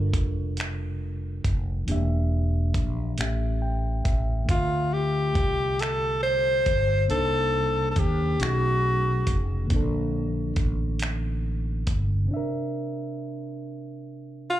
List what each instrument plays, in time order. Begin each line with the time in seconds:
Already playing: fretless electric bass G1, reed electric piano G3 D4 F4 A4 A#4
0.14 fretless electric bass F1, kick, closed hi-hat
0.57 finger snap, closed hi-hat
1.45 fretless electric bass F1, kick, closed hi-hat
1.85 fretless electric bass E1, reed electric piano E3 A#3 D4, closed hi-hat
1.90 reed electric piano G4 E5
2.74 fretless electric bass A#1, kick, closed hi-hat
3.16 fretless electric bass A1, reed electric piano A2 A3 C#4, closed hi-hat
3.20 reed electric piano G4 E5, finger snap
3.62 reed electric piano G5
4.05 fretless electric bass A1, reed electric piano E5, kick, closed hi-hat
4.43 reed electric piano D3 A3
4.49 fretless electric bass D2, reed electric piano C4 F4, tenor saxophone F4, kick, closed hi-hat
4.54 reed electric piano E5
4.93 tenor saxophone G4
5.35 fretless electric bass C2, kick, closed hi-hat
5.79 tenor saxophone A4, finger snap, closed hi-hat
6.23 tenor saxophone C5
6.66 fretless electric bass G1, kick, closed hi-hat
7.06 reed electric piano C3 A#3 D4, closed hi-hat
7.10 fretless electric bass C2, reed electric piano D#4 C5, tenor saxophone A4
7.91 tenor saxophone A4
7.96 fretless electric bass D#2, tenor saxophone G4, kick, closed hi-hat
8.37 fretless electric bass B1, reed electric piano B2 A3 C#4, closed hi-hat
8.41 reed electric piano D#4 G#4, tenor saxophone F#4, finger snap
9.27 fretless electric bass F1, kick, closed hi-hat
9.64 reed electric piano D3 A#3
9.70 fretless electric bass A#1, reed electric piano C4 D4, kick, closed hi-hat
9.76 reed electric piano A4
10.56 fretless electric bass A1, kick, closed hi-hat
10.99 finger snap, closed hi-hat
11.87 fretless electric bass G1, kick, closed hi-hat
12.25 reed electric piano C3 C4
12.31 reed electric piano D4 E5
12.37 reed electric piano A#4
14.50 tenor saxophone F4